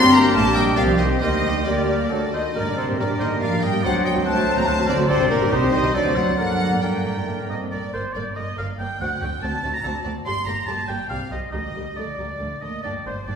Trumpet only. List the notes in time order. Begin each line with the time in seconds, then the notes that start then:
Already playing: G4
0.77 G4
1.22 G4
1.66 G4
2.11 A4
2.55 A#4
2.99 A#4
3.85 C5
4.26 C5
4.68 C5
5.09 D5
5.51 C5
5.94 C5
6.38 A#4
6.82 A#4